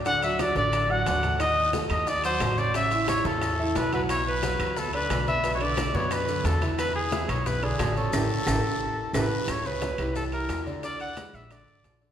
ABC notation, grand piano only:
X:1
M:4/4
L:1/8
Q:1/4=178
K:Bm
V:1 name="Grand piano"
[D,Dd] [F,Ff]2 [D,Dd]2 [F,Ff]2 [A,Aa] | [^D^d^d']2 [A,Aa]2 [Ddd'] [F,Ff]2 [Ccc'] | [C,Cc] [E,Ee]2 [C,Cc]2 [E,Ee]2 [F,Ff] | [B,Bb]2 [F,Ff]2 [B,Bb] [D,Dd]2 [B,Bb] |
[B,,B,B] [D,Dd]2 [B,,B,B]2 [D,Dd]2 [E,Ee] | [B,Bb]2 [E,Ee]2 [B,Bb] [D,Dd]2 [Ccc'] | [EGA] z [EGA] z3 [EGA] z | z [C,Cc]2 [E,EG]2 [E,EG]2 [D,Dd] |
[D,Dd]2 [_A,_A_c]2 [D,Dd]2 [=F,=FA] [D,Dd] |]